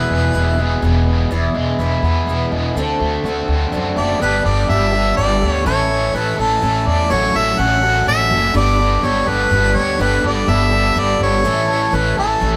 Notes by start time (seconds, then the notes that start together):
Already playing: E2 B2 E3 G#3 B3 E4 G#4 B4
0.10 E1
0.34 E1 E3 B3 E4 G#4
0.59 E2 B2 E3 G#3 B3 E4 G#4
0.82 E1 E3 B3 E4 G#4
1.31 E1 E2 E3 B3 E4 G#4
1.55 E1 G#3
1.79 E1 E3 B3 E4 G#4
2.02 E2 E4 G#4
2.06 B3
2.27 E1 E3 B3 E4 G#4
2.52 E1 G#3
2.75 D2 D3 A3 C4 F#4 A4
3.00 D2 A3
3.24 D2 A3 C4 F#4
3.28 A4
3.48 D2 C4
3.72 F#2 D3 A3 C4 F#4 A4
3.96 F#1 A3 C4 F#4 A4 D5
4.19 G1 G2 D3 G3 B3 D4 G4 A4 B4
4.44 G1 G3 B3 D4 G4 D5
4.69 G1 G3 B3 D4 G4 A4 E5
4.92 G3 B3 D4 G4 A4
5.17 G1 G3 B3 D4 A4 D5
5.41 D2 B3 D4 A4
5.51 C#5
5.66 A1 A2 E3 A3 C#4 E4 A4 C#5
5.89 A3 C#4 A4
6.13 A1 E3 A3 C#4 E4 A4 B4
6.38 A1 A3 C#4 E4 A4
6.61 A1 A3 C#4 E4 A4
6.86 E2 D5
7.10 A1 A2 F#3 A3 C#4 F#4 A4 C#5
7.33 A1 A3 C#4 F#4 E5
7.57 A1 F#3 A3 C#4 F#4 A4 F#5
7.82 A3 C#4 F#4 A4
8.07 A1 A3 C#4 F#4 A4 E5
8.31 F#1 C#4 F#4 A4
8.54 G1 G2 D3 G3 B3 D4 G4 A4 D5
8.78 G3 B3 D4 G4
9.03 G1 G3 B3 D4 G4 A4 C#5
9.26 G1 G3 B3 D4 G4 A4 B4
9.50 G1 G3 B3 D4 A4
9.75 D2 C#5
9.99 G1 G2 D3 G3 B3 D4 G4 A4 B4
10.22 G1 G3 B3 D4 G4 D5
10.47 G1 G3 B3 D4 G4 A4 E5
10.71 G3 B3 D4 G4 A4
10.96 G1 G3 B3 D4 A4 D5
11.20 G1 B3 D4 A4 C#5
11.44 A1 A2 E3 A3 C#4 E4 A4
11.68 A3 C#4 A4
11.92 A1 E3 A3 C#4 E4 A4 B4
12.17 A1 A3 C#4 E4 A4
12.40 A1 A3 C#4 E4 A4